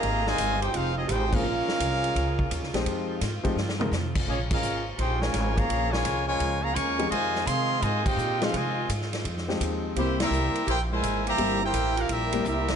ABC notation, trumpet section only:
X:1
M:4/4
L:1/8
Q:"Swing" 1/4=169
K:Fm
V:1 name="Trumpet section"
[Aefb] [Fcea]2 [EAcg] [EAcf] [CFAe] [EAcg] [DABf]- | [DABf]6- [DABf] z | z8 | [B,FAd] [DABf]2 z [EAcg] [FBda]2 [Adfb]- |
[Adfb] [FBda]2 [FBda]2 [Adfb] [Bfad']2 | [Fcea]2 [Aefc']2 [Fcea] [Fceg]2 [EAcf] | [Fcea]2 z6 | [B,=EGc] [CGB=e]3 [EBcg] [EBca]2 [Gceb]- |
[Gc=eb] [=EBcg]2 [DGBf] [CGBe]2 [CGBe]2 |]